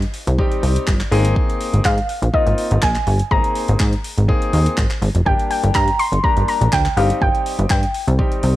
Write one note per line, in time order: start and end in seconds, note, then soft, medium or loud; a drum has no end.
0.02 closed hi-hat medium
0.14 open hi-hat medium
0.27 0.42 C2 medium
0.27 closed hi-hat medium
0.38 0.94 G3 medium
0.38 0.94 C4 medium
0.38 0.94 D#4 medium
0.38 0.94 G4 loud
0.38 kick loud
0.51 closed hi-hat medium
0.63 0.78 C2 medium
0.63 open hi-hat medium
0.76 closed hi-hat medium
0.87 1.02 G1 medium
0.87 kick loud
0.87 clap loud
1.00 clap medium
1.00 closed hi-hat medium
1.11 1.34 G#1 medium
1.11 1.90 A#3 medium
1.11 1.90 C4 medium
1.11 1.90 D#4 medium
1.11 1.90 G#4 loud
1.11 open hi-hat medium
1.25 closed hi-hat medium
1.36 kick loud
1.50 closed hi-hat medium
1.61 open hi-hat medium
1.73 1.80 G#1 medium
1.73 closed hi-hat medium
1.85 2.00 G#2 loud
1.85 2.35 F5 medium
1.85 kick loud
1.85 clap loud
1.98 closed hi-hat medium
2.09 open hi-hat medium
2.22 2.29 A#1 medium
2.22 closed hi-hat medium
2.33 2.89 A#3 medium
2.33 2.89 C4 medium
2.33 2.89 D#4 medium
2.33 2.89 F4 medium
2.33 2.84 D#5 medium
2.33 kick loud
2.47 2.53 G#1 medium
2.47 closed hi-hat medium
2.58 open hi-hat medium
2.71 2.78 G#1 loud
2.71 closed hi-hat medium
2.82 2.97 A#1 medium
2.82 3.33 G#5 loud
2.82 kick loud
2.82 clap loud
2.95 clap medium
2.95 closed hi-hat medium
3.07 3.22 G1 loud
3.07 open hi-hat medium
3.19 closed hi-hat medium
3.31 3.39 G#1 loud
3.31 3.86 A#3 medium
3.31 3.86 C4 medium
3.31 3.86 D#4 medium
3.31 3.86 G#4 medium
3.31 4.74 A#5 loud
3.31 kick loud
3.44 closed hi-hat medium
3.55 open hi-hat medium
3.68 3.75 G#1 medium
3.68 closed hi-hat medium
3.80 3.95 G#2 loud
3.80 kick loud
3.80 clap loud
3.93 closed hi-hat medium
4.04 open hi-hat medium
4.18 4.32 G#1 medium
4.18 closed hi-hat medium
4.28 4.84 A#3 medium
4.28 4.84 C4 medium
4.28 4.84 D#4 medium
4.28 4.84 G#4 loud
4.28 kick loud
4.42 closed hi-hat medium
4.53 4.68 D#2 medium
4.53 open hi-hat medium
4.66 closed hi-hat medium
4.78 4.85 G#1 loud
4.78 kick loud
4.78 clap loud
4.90 clap medium
4.90 closed hi-hat medium
5.02 5.10 G#1 medium
5.02 open hi-hat medium
5.15 5.22 F1 medium
5.15 closed hi-hat medium
5.26 5.34 G1 loud
5.26 5.81 G3 medium
5.26 5.81 A#3 medium
5.26 5.81 D4 medium
5.26 5.81 G4 medium
5.26 5.49 G5 loud
5.26 kick loud
5.40 closed hi-hat medium
5.51 5.76 G5 medium
5.51 open hi-hat medium
5.64 5.71 G1 medium
5.64 closed hi-hat medium
5.75 5.90 G2 loud
5.75 6.00 A#5 loud
5.75 kick loud
5.75 clap loud
5.88 closed hi-hat medium
5.99 6.25 C6 loud
5.99 open hi-hat medium
6.12 6.19 G1 medium
6.12 closed hi-hat medium
6.23 6.79 G3 medium
6.23 6.79 A#3 medium
6.23 6.79 D4 medium
6.23 6.79 G4 medium
6.23 6.47 A#5 loud
6.23 kick loud
6.37 6.44 G1 medium
6.37 closed hi-hat medium
6.48 6.71 A#5 loud
6.48 open hi-hat medium
6.61 6.68 A#1 medium
6.61 closed hi-hat medium
6.73 6.88 D2 loud
6.73 6.98 G5 medium
6.73 kick loud
6.73 clap loud
6.85 clap medium
6.85 closed hi-hat medium
6.97 7.12 G1 loud
6.97 7.75 G3 medium
6.97 7.75 C4 medium
6.97 7.75 D#4 medium
6.97 7.76 G4 medium
6.97 7.08 F5 medium
6.97 open hi-hat medium
7.10 closed hi-hat medium
7.22 7.29 G1 loud
7.22 7.67 G5 loud
7.22 kick loud
7.35 closed hi-hat medium
7.46 open hi-hat medium
7.59 7.66 G1 medium
7.59 closed hi-hat medium
7.70 7.85 G2 medium
7.70 8.56 G5 medium
7.70 kick loud
7.70 clap loud
7.83 closed hi-hat medium
7.94 open hi-hat medium
8.08 8.22 C2 medium
8.08 closed hi-hat medium
8.18 8.56 G3 medium
8.18 8.56 C4 medium
8.18 8.56 D#4 medium
8.18 8.56 G4 medium
8.18 kick loud
8.32 closed hi-hat medium
8.43 8.56 C2 medium
8.43 open hi-hat medium